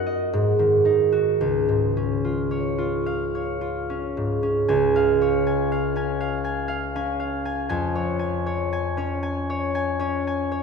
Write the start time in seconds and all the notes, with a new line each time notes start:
Already playing: F#2 F#3 D#4 F#4 A#4 F#5
0.06 D#5
0.33 G#2
0.59 D#3
0.85 D#4
1.12 F#4
1.41 C#2
1.69 G#2
1.97 C#4
2.25 F4
2.51 C#5
2.78 F4
3.06 F5
3.35 C#5
3.61 F4
3.90 C#4
4.17 G#2
4.43 C#4
4.68 C#2 G#5
4.96 F5
5.21 C#5
5.47 G#5
5.72 F5
5.96 C#4 G#5
6.21 F5
6.44 G#5
6.68 F5
6.96 C#4 G#5
7.20 F5
7.45 G#5
7.69 F2 G#5
7.95 C#5
8.19 G#5
8.46 C#5
8.73 G#5
8.97 C#4 C#5
9.23 G#5
9.50 C#5
9.75 G#5
9.99 C#4 C#5
10.27 G#5
10.52 C#5